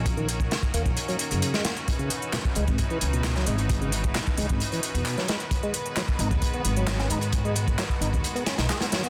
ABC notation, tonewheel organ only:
X:1
M:4/4
L:1/16
Q:1/4=132
K:Dbdor
V:1 name="Tonewheel organ" clef=bass
z E, z2 D, z B, z2 G, z D,2 A, B, z | z D, z2 C, z A, z2 F, z C,2 G, A, z | z D, z2 C, z A, z2 F, z C,2 G, A, z | z A, z2 G, z E z2 C z G,2 D E z |
z A, z2 G, z E z2 C D E A C G, C |]